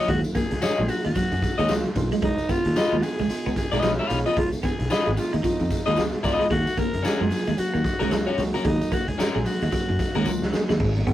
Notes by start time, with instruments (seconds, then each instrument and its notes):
Already playing: tine electric piano F#3 A#3 C#4 F4
0.08 fingered electric bass D#2, clean electric guitar G#3, alto saxophone F#4, kick, closed hi-hat
0.24 tambourine
0.35 clean electric guitar A#3, alto saxophone G#4, kick, closed hi-hat, tambourine
0.51 fingered electric bass C#2, muted clean electric guitar stroke, snare, closed hi-hat
0.62 clean electric guitar F#4 C#5 D#5, alto saxophone G#4, snare, tambourine
0.78 fingered electric bass A#1, tine electric piano F#3 A#3 C#4 F4, clean electric guitar G#3
0.88 alto saxophone F#4, muted clean electric guitar stroke, open hi-hat, tambourine
1.04 fingered electric bass D#2, clean electric guitar G#3, alto saxophone F#4, closed hi-hat
1.15 tine electric piano F#3 A#3 C#4 F#4, clean electric guitar F#3, muted fingered electric bass stroke, kick, closed hi-hat, tambourine
1.31 fingered electric bass F#2, muted clean electric guitar stroke, closed hi-hat, tambourine
1.42 kick, snare, closed hi-hat, tambourine
1.58 fingered electric bass D#2, clean electric guitar G#3 F#4 C#5 D#5, closed hi-hat, tambourine
1.69 fingered electric bass C#2, tine electric piano F#3 A#3 C#4 F4, clean electric guitar F#3, snare, tambourine
1.85 closed hi-hat
1.95 fingered electric bass B1, tine electric piano F#3 A#3 C#4 F4, muted clean electric guitar stroke, kick, closed hi-hat, tambourine
2.11 clean electric guitar G#3, closed hi-hat, tambourine
2.22 fingered electric bass C#2, clean electric guitar G#3, alto saxophone D#4, kick, closed hi-hat
2.38 closed hi-hat, tambourine
2.49 clean electric guitar B3, alto saxophone F4, kick, closed hi-hat, tambourine
2.65 fingered electric bass D#2, muted clean electric guitar stroke, snare, closed hi-hat
2.76 clean electric guitar F4 B4 D#5, snare, tambourine
2.91 fingered electric bass D#2, tine electric piano G#3 B3 D#4 F4, clean electric guitar G#3, closed hi-hat
3.02 alto saxophone G#4, muted clean electric guitar stroke, open hi-hat, tambourine
3.18 fingered electric bass C#2, clean electric guitar G#3, closed hi-hat, tambourine
3.29 tine electric piano G#3 B3 D#4 F4, muted fingered electric bass stroke, closed hi-hat, tambourine
3.45 fingered electric bass C#2, clean electric guitar B3, tambourine
3.56 alto saxophone G#4, muted clean electric guitar stroke, kick, snare, closed hi-hat, tambourine
3.72 fingered electric bass B1, clean electric guitar G#3 F4 B4 D#5, closed hi-hat, tambourine
3.83 fingered electric bass B1, clean electric guitar F3, tine electric piano G#3 B3 D#4 F4, alto saxophone C#4, snare, tambourine
3.99 clean electric guitar F4 B4 F5
4.09 fingered electric bass B1, tine electric piano G#3 B3 D#4 G#4, muted clean electric guitar stroke, closed hi-hat, tambourine
4.26 clean electric guitar F3 F4 B4 D#5, closed hi-hat
4.37 fingered electric bass C#2, clean electric guitar G#3, alto saxophone F4, kick, closed hi-hat
4.52 closed hi-hat, tambourine
4.63 clean electric guitar B3, alto saxophone G#4, kick, closed hi-hat, tambourine
4.79 fingered electric bass B1, muted clean electric guitar stroke, snare, closed hi-hat
4.90 clean electric guitar F4 B4 D#5, alto saxophone G#4, snare, tambourine
5.06 fingered electric bass G#1, clean electric guitar G#3, tine electric piano G#3 B3 D#4 G#4, closed hi-hat
5.17 alto saxophone F4, muted clean electric guitar stroke, open hi-hat, tambourine
5.33 fingered electric bass D#2, clean electric guitar G#3, alto saxophone D#4, closed hi-hat
5.43 clean electric guitar F3, tine electric piano G#3 B3 D#4 F4, muted fingered electric bass stroke, kick, closed hi-hat, tambourine
5.60 fingered electric bass F2, muted clean electric guitar stroke, closed hi-hat, tambourine
5.70 kick, snare, closed hi-hat, tambourine
5.86 fingered electric bass D#2, clean electric guitar G#3 F4 B4 D#5, closed hi-hat
5.96 fingered electric bass C#2, clean electric guitar F3, tine electric piano G#3 B3 D#4 G#4, snare, tambourine
6.13 closed hi-hat
6.23 fingered electric bass C#2, tine electric piano G#3 B3 D#4 F4, clean electric guitar F4 B4 D#5, muted clean electric guitar stroke, kick, closed hi-hat, tambourine
6.40 clean electric guitar G#3, closed hi-hat
6.50 fingered electric bass D#2, clean electric guitar G#3, alto saxophone F#4, kick, closed hi-hat
6.67 closed hi-hat, tambourine
6.77 clean electric guitar A#3, alto saxophone A#4, kick, closed hi-hat, tambourine
6.93 fingered electric bass F#2, muted clean electric guitar stroke, closed hi-hat
7.03 clean electric guitar C#4 F#4 A#4, alto saxophone G#4, snare, tambourine
7.20 fingered electric bass F#2, tine electric piano F#3 A#3 C#4 F4, clean electric guitar G#3, closed hi-hat
7.30 muted clean electric guitar stroke, open hi-hat, tambourine
7.47 fingered electric bass D#2, clean electric guitar G#3, closed hi-hat, tambourine
7.57 tine electric piano F#3 A#3 C#4 F#4, alto saxophone F#4, muted fingered electric bass stroke, closed hi-hat, tambourine
7.74 fingered electric bass D#2, clean electric guitar A#3, tambourine
7.84 muted clean electric guitar stroke, kick, snare, closed hi-hat, tambourine
7.99 fingered electric bass C#2, clean electric guitar G#3 C#4 F#4 A#4, closed hi-hat, tambourine
8.11 fingered electric bass C#2, tine electric piano F#3 A#3 C#4 F4, clean electric guitar F#3, snare, tambourine
8.27 clean electric guitar C#4 F#4 C#5, closed hi-hat
8.38 fingered electric bass C#2, tine electric piano F#3 A#3 C#4 F#4, muted clean electric guitar stroke, closed hi-hat, tambourine
8.54 clean electric guitar F#3 C#4 F#4 A#4, closed hi-hat, tambourine
8.65 fingered electric bass D#2, clean electric guitar G#3, alto saxophone D#4, kick, closed hi-hat
8.81 closed hi-hat, tambourine
8.92 clean electric guitar A#3, alto saxophone F#4, kick, closed hi-hat, tambourine
9.08 fingered electric bass C#2, alto saxophone G#4, muted clean electric guitar stroke, closed hi-hat
9.18 clean electric guitar C#4 F#4 A#4, snare, tambourine
9.35 fingered electric bass A#1, tine electric piano F#3 A#3 C#4 G#4, clean electric guitar G#3, closed hi-hat
9.45 alto saxophone F#4, muted clean electric guitar stroke, open hi-hat, tambourine
9.62 fingered electric bass D#2, clean electric guitar G#3, closed hi-hat, tambourine
9.72 clean electric guitar F#3, tine electric piano F#3 A#3 C#4 F#4, kick, closed hi-hat, tambourine
9.89 fingered electric bass F#2, muted clean electric guitar stroke, closed hi-hat
9.99 kick, snare, closed hi-hat, tambourine
10.14 fingered electric bass D#2, clean electric guitar G#3 C#4 F#4 A#4, closed hi-hat
10.25 fingered electric bass C#2, clean electric guitar F#3, tine electric piano F#3 A#3 C#4 F4, tambourine
10.42 fingered electric bass C#2, snare
10.52 tine electric piano F#3 A#3 C#4 G#4, muted clean electric guitar stroke, snare, tambourine
10.69 fingered electric bass D#2, clean electric guitar G#3, snare, tambourine
10.80 fingered electric bass G#1, clean electric guitar G#3, kick, crash
10.96 tine electric piano F#3 A#3 B3 D#4, closed hi-hat
11.07 fingered electric bass G#1, clean electric guitar B3, kick, closed hi-hat